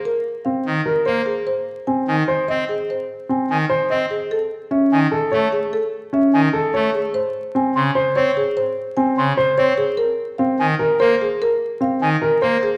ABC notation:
X:1
M:7/8
L:1/8
Q:1/4=148
K:Abmix
V:1 name="Flute"
z6 z | z3 a z3 | z3 a z3 | z3 ^g z3 |
z3 ^g z3 | z3 c' z3 | z3 c' z3 | z3 a z3 |
z3 a z3 |]
V:2 name="Grand piano"
z2 C z B c z | z2 C z c e z | z2 C z c e z | z2 ^C z =A ^c z |
z2 ^C z =A ^c z | z2 C z c d z | z2 C z c d z | z2 C z B c z |
z2 C z B c z |]
V:3 name="Marimba"
B z f z2 B A | c z a z2 c A | c z a z2 c A | =A z =e z2 A ^G |
=A z =e z2 A ^G | c z a z2 c A | c z a z2 c A | B z f z2 B A |
B z f z2 B A |]
V:4 name="Pipe organ" clef=bass
z3 E, z B, z | z3 E, z C z | z3 E, z C z | z3 E, z =A, z |
z3 E, z =A, z | z3 D, z C z | z3 D, z C z | z3 E, z B, z |
z3 E, z B, z |]